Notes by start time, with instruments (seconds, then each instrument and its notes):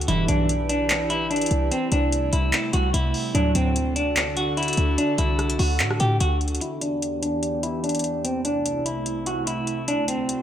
0.01 closed hi-hat
0.08 808-style bass E1, analog polysynth B1 G2 E3, analog synth pad E3 E4 G4 B4, clean electric guitar E4, closed hi-hat
0.28 808-style bass B1, clean electric guitar D4, closed hi-hat
0.49 closed hi-hat
0.69 clean electric guitar D4, closed hi-hat
0.90 clap, closed hi-hat
1.10 clean electric guitar E4, closed hi-hat
1.31 clean electric guitar D4, closed hi-hat
1.36 closed hi-hat
1.41 closed hi-hat
1.46 closed hi-hat
1.51 808-style bass C2, closed hi-hat
1.71 analog synth pad C3 G3 A3, clean electric guitar C4, closed hi-hat
1.92 808-style bass C2, clean electric guitar D4, closed hi-hat
2.12 closed hi-hat
2.33 808-style bass C2, clean electric guitar E4, closed hi-hat
2.53 clap, closed hi-hat
2.73 808-style bass C2, clean electric guitar F#4, closed hi-hat
2.94 808-style bass C2, clean electric guitar E4, closed hi-hat
3.14 open hi-hat
3.35 808-style bass D2, analog polysynth D2 A2 F#3, analog synth pad D3 D4 F#4 A4, clean electric guitar D4, closed hi-hat
3.55 808-style bass D2, clean electric guitar C4, closed hi-hat
3.76 closed hi-hat
3.96 clean electric guitar D4, closed hi-hat
4.16 clap, closed hi-hat
4.37 clean electric guitar F#4, closed hi-hat
4.57 clean electric guitar E4, closed hi-hat
4.63 closed hi-hat
4.68 closed hi-hat
4.73 closed hi-hat
4.77 808-style bass D2, closed hi-hat
4.98 clean electric guitar D4, closed hi-hat
5.18 808-style bass C2, clean electric guitar E4, closed hi-hat
5.39 cross-stick, closed hi-hat
5.50 closed hi-hat
5.59 808-style bass D2, clean electric guitar F#4, open hi-hat
5.79 808-style bass A2, clap, closed hi-hat
5.91 cross-stick
6.00 808-style bass A2, clean electric guitar G4, closed hi-hat
6.20 808-style bass D2, clean electric guitar F#4, closed hi-hat
6.41 closed hi-hat
6.48 closed hi-hat
6.55 closed hi-hat
6.61 analog synth pad E2 E3 B3 G4, clean electric guitar E4, closed hi-hat
6.81 clean electric guitar D4, closed hi-hat
7.02 closed hi-hat
7.22 clean electric guitar D4, closed hi-hat
7.43 closed hi-hat
7.63 clean electric guitar E4, closed hi-hat
7.84 clean electric guitar D4, closed hi-hat
7.89 closed hi-hat
7.95 closed hi-hat
7.99 closed hi-hat
8.04 closed hi-hat
8.25 analog synth pad C2 C3 A3 E4, clean electric guitar C4, closed hi-hat
8.45 clean electric guitar D4, closed hi-hat
8.66 closed hi-hat
8.86 clean electric guitar E4, closed hi-hat
9.06 closed hi-hat
9.26 clean electric guitar F#4, closed hi-hat
9.47 clean electric guitar E4, closed hi-hat
9.67 closed hi-hat
9.88 analog synth pad D2 D3 F#4, clean electric guitar D4, closed hi-hat
10.08 clean electric guitar C4, closed hi-hat
10.29 closed hi-hat